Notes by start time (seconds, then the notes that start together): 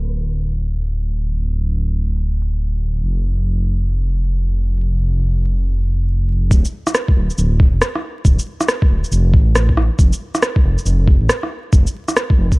Already playing: D1
3.03 F1
6.51 D1, kick, shaker
6.65 shaker
6.87 cross-stick, shaker
6.95 cross-stick, shaker
7.08 kick
7.16 D1
7.30 shaker
7.38 D1, shaker
7.60 kick
7.73 F1
7.82 cross-stick, shaker
7.95 cross-stick
8.25 D1, kick, shaker
8.39 shaker
8.61 cross-stick, shaker
8.68 cross-stick, shaker
8.82 kick
8.90 D1
9.04 shaker
9.12 F1, shaker
9.33 A1, kick
9.55 cross-stick, shaker
9.69 kick
9.77 A1, cross-stick
9.99 F1, kick, shaker
10.13 shaker
10.35 cross-stick, shaker
10.42 cross-stick, shaker
10.56 kick
10.64 F1
10.78 shaker
10.85 F1, shaker
11.07 kick
11.21 A1
11.29 cross-stick, shaker
11.43 cross-stick
11.73 F1, kick, shaker
11.87 shaker
12.08 cross-stick, shaker
12.17 cross-stick, shaker
12.30 kick
12.38 F1
12.52 kick, shaker